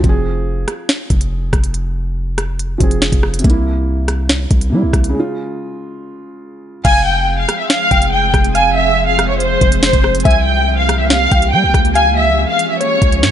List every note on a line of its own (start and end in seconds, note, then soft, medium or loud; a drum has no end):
0.00 0.65 F1 loud
0.00 2.74 F3 medium
0.00 2.76 C4 medium
0.00 kick loud
0.00 closed hi-hat soft
0.09 2.79 G#4 medium
0.68 cross-stick medium
0.68 closed hi-hat medium
0.89 snare loud
0.89 closed hi-hat medium
1.10 1.51 F1 loud
1.10 kick medium
1.10 closed hi-hat medium
1.21 closed hi-hat medium
1.53 2.77 F1 loud
1.53 kick loud
1.53 cross-stick medium
1.53 closed hi-hat medium
1.64 closed hi-hat medium
1.74 closed hi-hat medium
2.38 cross-stick medium
2.38 closed hi-hat medium
2.59 closed hi-hat medium
2.78 3.11 F1 loud
2.78 3.43 F3 medium
2.78 3.44 C4 soft
2.78 kick medium
2.78 closed hi-hat medium
2.83 3.46 G#4 medium
2.91 closed hi-hat medium
3.02 snare loud
3.12 3.43 F1 loud
3.12 kick loud
3.12 closed hi-hat medium
3.23 cross-stick medium
3.34 closed hi-hat medium
3.39 4.67 C3 medium
3.39 closed hi-hat medium
3.44 4.47 C2 loud
3.44 4.70 A#3 medium
3.44 kick loud
3.44 closed hi-hat medium
3.50 4.72 E4 medium
3.50 closed hi-hat soft
4.08 cross-stick medium
4.08 closed hi-hat medium
4.29 snare loud
4.29 closed hi-hat medium
4.51 4.74 C2 loud
4.51 kick medium
4.51 closed hi-hat medium
4.61 closed hi-hat medium
4.70 5.13 C3 medium
4.70 4.84 G3 loud
4.70 5.15 A#3 soft
4.75 5.16 E4 medium
4.83 4.93 C2 loud
4.93 5.14 C2 loud
4.93 kick loud
4.93 cross-stick medium
4.93 closed hi-hat medium
5.04 closed hi-hat medium
5.09 6.79 C#3 medium
5.14 6.81 G#3 medium
5.20 6.84 F4 medium
6.85 7.46 F1 loud
6.85 10.22 F3 medium
6.85 10.22 G#3 medium
6.85 11.91 C4 medium
6.85 10.22 G#4 medium
6.85 7.87 F5 loud
6.85 7.05 G#5 loud
6.85 kick loud
6.85 closed hi-hat medium
6.85 crash loud
7.06 7.36 G5 medium
7.38 7.58 F5 medium
7.49 cross-stick medium
7.49 closed hi-hat medium
7.59 7.69 E5 medium
7.69 8.09 F5 loud
7.69 snare loud
7.69 closed hi-hat medium
7.91 8.32 F1 loud
7.91 8.51 G5 medium
7.91 kick medium
7.91 closed hi-hat medium
8.02 closed hi-hat medium
8.12 8.32 G5 medium
8.34 9.57 F1 loud
8.34 kick loud
8.34 cross-stick medium
8.34 closed hi-hat medium
8.44 closed hi-hat medium
8.55 9.79 F5 loud
8.55 8.75 G#5 loud
8.55 closed hi-hat medium
8.76 9.06 E5 medium
9.08 9.28 F5 medium
9.19 cross-stick medium
9.19 closed hi-hat medium
9.30 9.39 C#5 medium
9.40 9.80 C5 medium
9.40 closed hi-hat medium
9.61 9.92 F1 loud
9.61 kick medium
9.61 closed hi-hat medium
9.72 closed hi-hat medium
9.83 10.03 C5 medium
9.83 snare loud
9.93 10.24 F1 loud
9.93 kick loud
9.93 closed hi-hat medium
10.04 cross-stick medium
10.15 closed hi-hat medium
10.20 closed hi-hat medium
10.25 11.28 C2 loud
10.25 11.94 E3 medium
10.25 11.94 A#3 medium
10.25 11.94 G4 medium
10.25 11.28 E5 loud
10.25 10.45 G#5 medium
10.25 kick loud
10.25 closed hi-hat medium
10.31 closed hi-hat soft
10.46 10.76 G5 medium
10.79 10.98 F5 medium
10.89 cross-stick loud
10.89 closed hi-hat medium
11.00 11.10 E5 medium
11.10 11.50 F5 loud
11.10 snare loud
11.10 closed hi-hat medium
11.31 11.54 C2 loud
11.31 11.92 G5 medium
11.31 kick medium
11.31 closed hi-hat medium
11.42 closed hi-hat medium
11.53 11.65 G3 loud
11.53 11.73 G5 medium
11.63 11.74 C2 loud
11.74 12.46 C#2 loud
11.74 kick loud
11.74 cross-stick medium
11.74 closed hi-hat medium
11.85 closed hi-hat medium
11.95 13.31 F3 medium
11.95 13.31 G#3 medium
11.95 13.31 C#4 medium
11.95 13.31 G#4 medium
11.95 12.77 F5 loud
11.95 12.15 G#5 loud
11.95 closed hi-hat medium
12.17 12.47 E5 medium
12.49 12.69 F5 medium
12.59 closed hi-hat medium
12.70 12.80 E5 medium
12.80 13.20 C#5 medium
12.80 13.31 C#5 medium
12.80 closed hi-hat medium
13.02 13.25 C#2 loud
13.02 kick medium
13.02 closed hi-hat medium
13.12 closed hi-hat medium
13.23 13.31 G#2 loud
13.23 13.31 C#5 medium
13.23 snare loud